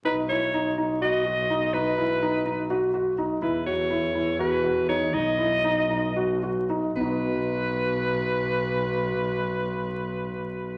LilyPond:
<<
  \new Staff \with { instrumentName = "Soprano saxophone" } { \time 7/8 \key b \major \tempo 4 = 120 b'8 cis''4 r8 dis''4. | b'2 r4. | b'8 cis''4. b'4 cis''8 | dis''2~ dis''8 r4 |
b'2.~ b'8~ | b'2.~ b'8 | }
  \new Staff \with { instrumentName = "Felt piano" } { \time 7/8 \key b \major dis'8 e'8 dis'8 dis'8 fis'8 fis'8 dis'8 | dis'8 e'8 dis'8 dis'8 fis'8 fis'8 dis'8 | e'8 fis'8 e'8 e'8 fis'8 fis'8 dis'8 | dis'8 e'8 dis'8 dis'8 fis'8 fis'8 dis'8 |
<b dis' fis' b'>2.~ <b dis' fis' b'>8~ | <b dis' fis' b'>2.~ <b dis' fis' b'>8 | }
  \new Staff \with { instrumentName = "Double bass" } { \clef bass \time 7/8 \key b \major b,,2.~ b,,8~ | b,,2.~ b,,8 | e,2.~ e,8 | b,,2.~ b,,8 |
b,,2.~ b,,8~ | b,,2.~ b,,8 | }
>>